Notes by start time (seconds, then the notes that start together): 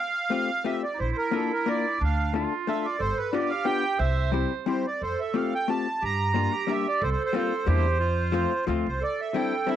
Already playing: F5
0.30 A3 C4 F4 G4
0.64 A3 C4 F4 G4 E5
0.83 D5
0.94 D#4
0.99 A#1 E4 C5
1.12 C5
1.18 A#4
1.31 A#3 D4 F4 A4 A#4
1.52 A#4
1.66 A#3 D4 F4 A#4 D5
2.01 D2 D4 F5
2.34 A3 D4 F4 A4
2.67 A3 D4 F4 A4 E5
2.85 D5
2.99 G1 A4 C5
3.18 B4
3.33 B3 D4 F4 G4 D5
3.50 F5
3.65 B3 D4 F4 G4 G5
3.99 C2 C5 E5
4.32 G3 C4 E4 G4
4.66 G3 C4 E4 G4 C5
4.87 D5
5.00 F2 A4 C5
5.20 E5
5.34 A3 C4 F4 G4 F5
5.55 G5
5.68 A3 C4 F4 G4 A5
6.02 G2 G4 A#5
6.34 G3 A#3 D4 F4 G4
6.52 G4
6.67 G3 A#3 D4 G4 E5
6.89 D5
7.02 C2 A4 C5
7.11 C5
7.26 C5
7.33 G3 A#3 C4 F4 C5
7.67 E2 G3 A#3 D4 E4 G4
8.00 F2 F4
8.32 F3 A3 C4 F4
8.67 D2 F3 A3 C4 F4
8.87 C2 C5
9.01 A4 D5
9.21 E5
9.34 G3 C4 D4 E4 G5
9.67 G3 C4 D4 E4 E5